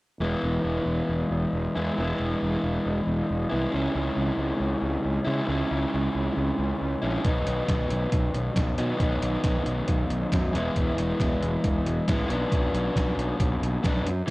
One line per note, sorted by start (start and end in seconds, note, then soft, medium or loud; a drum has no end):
0.20 0.34 E1 medium
0.20 1.78 E3 medium
0.20 1.77 G#3 medium
0.20 1.74 B3 medium
0.20 1.75 E4 medium
0.43 0.56 E1 medium
0.64 0.78 E1 medium
0.86 0.99 E1 medium
1.09 1.22 E1 medium
1.30 1.44 E1 medium
1.53 1.66 E1 medium
1.75 1.89 E2 medium
1.75 1.97 E3 medium
1.75 1.98 G#3 medium
1.75 1.97 B3 medium
1.75 2.00 E4 medium
1.97 2.11 E1 medium
1.97 3.52 E3 medium
1.97 3.51 G#3 medium
1.97 3.50 B3 medium
1.97 3.49 E4 medium
2.19 2.33 E1 medium
2.42 2.55 E1 medium
2.63 2.77 E1 medium
2.86 2.99 E1 medium
3.07 3.20 E1 medium
3.30 3.43 E1 medium
3.50 3.65 C2 medium
3.50 3.71 E3 medium
3.50 3.72 G#3 medium
3.50 3.72 B3 medium
3.50 3.74 E4 medium
3.71 3.87 C#2 medium
3.71 5.24 C#3 medium
3.71 5.25 G#3 medium
3.71 5.25 C#4 medium
3.71 5.23 E4 medium
3.95 4.08 C#2 medium
4.17 4.30 C#2 medium
4.37 4.51 C#2 medium
4.60 4.74 C#2 medium
4.82 4.95 C#2 medium
5.04 5.18 C#2 medium
5.24 5.40 C#3 medium
5.24 5.47 C#3 medium
5.24 5.47 G#3 medium
5.24 5.47 C#4 medium
5.24 5.46 E4 medium
5.48 5.62 C#2 medium
5.48 7.01 C#3 medium
5.48 7.01 G#3 medium
5.48 7.02 C#4 medium
5.48 7.00 E4 medium
5.71 5.84 C#2 medium
5.94 6.07 C#2 medium
6.15 6.28 C#2 medium
6.37 6.50 C#2 medium
6.58 6.72 C#2 medium
6.81 6.94 C#2 medium
7.02 7.16 A#1 medium
7.02 7.24 C#3 medium
7.02 7.24 G#3 medium
7.02 7.23 C#4 medium
7.02 7.23 E4 medium
7.23 7.38 B1 medium
7.23 8.76 B2 medium
7.23 8.77 D#3 medium
7.23 8.77 F#3 medium
7.23 8.78 B3 medium
7.23 8.77 D#4 medium
7.23 kick medium
7.23 closed hi-hat medium
7.47 7.60 B1 medium
7.47 closed hi-hat medium
7.68 7.81 B1 medium
7.68 kick medium
7.68 snare medium
7.68 closed hi-hat medium
7.91 8.04 B1 medium
7.91 closed hi-hat soft
8.12 8.26 B1 medium
8.12 kick medium
8.12 closed hi-hat medium
8.35 8.48 B1 medium
8.35 closed hi-hat medium
8.56 8.69 B1 medium
8.56 kick loud
8.56 snare loud
8.56 closed hi-hat medium
8.78 8.92 B2 medium
8.78 8.98 B2 medium
8.78 8.99 D#3 medium
8.78 9.00 F#3 medium
8.78 9.02 B3 medium
8.78 8.99 D#4 medium
8.78 closed hi-hat medium
9.00 9.13 B1 medium
9.00 10.52 B2 medium
9.00 10.53 D#3 medium
9.00 10.53 F#3 medium
9.00 10.55 B3 medium
9.00 10.54 D#4 medium
9.00 kick medium
9.00 closed hi-hat medium
9.22 9.35 B1 medium
9.22 closed hi-hat medium
9.44 9.57 B1 medium
9.44 kick medium
9.44 snare medium
9.44 closed hi-hat medium
9.66 9.80 B1 medium
9.66 closed hi-hat medium
9.88 10.01 B1 medium
9.88 kick medium
9.88 closed hi-hat medium
10.10 10.24 B1 medium
10.10 closed hi-hat soft
10.32 10.56 F#2 medium
10.32 kick loud
10.32 snare loud
10.32 closed hi-hat medium
10.53 10.68 E1 medium
10.53 12.06 E3 medium
10.53 12.07 G#3 medium
10.53 12.09 B3 loud
10.53 12.08 E4 medium
10.53 closed hi-hat medium
10.76 10.89 E1 medium
10.76 kick medium
10.76 closed hi-hat medium
10.98 11.11 E1 medium
10.98 closed hi-hat medium
11.20 11.33 E1 medium
11.20 kick medium
11.20 snare medium
11.20 closed hi-hat medium
11.42 11.55 E1 medium
11.42 closed hi-hat soft
11.64 11.77 E1 medium
11.64 kick medium
11.64 closed hi-hat medium
11.85 11.99 E1 medium
11.85 closed hi-hat medium
12.08 12.21 A1 medium
12.08 12.28 E3 medium
12.08 12.29 G#3 medium
12.08 12.30 B3 medium
12.08 12.30 E4 medium
12.08 kick loud
12.08 snare loud
12.08 closed hi-hat medium
12.28 12.44 B1 medium
12.28 13.82 B2 medium
12.28 13.83 F#3 medium
12.28 13.83 B3 medium
12.28 13.83 D4 medium
12.28 closed hi-hat medium
12.52 12.65 B1 medium
12.52 kick medium
12.52 closed hi-hat medium
12.74 12.88 B1 medium
12.74 closed hi-hat medium
12.95 13.09 B1 medium
12.95 kick medium
12.95 snare medium
12.95 closed hi-hat medium
13.17 13.31 B1 medium
13.17 closed hi-hat medium
13.39 13.53 B1 medium
13.39 kick loud
13.39 closed hi-hat medium
13.62 13.76 B1 medium
13.62 closed hi-hat medium
13.83 13.98 B1 medium
13.83 14.04 B2 medium
13.83 14.05 F#3 medium
13.83 14.05 B3 medium
13.83 14.06 D4 medium
13.83 kick loud
13.83 snare loud
13.83 closed hi-hat medium
14.07 14.21 F#2 medium
14.07 closed hi-hat medium
14.27 14.30 E3 medium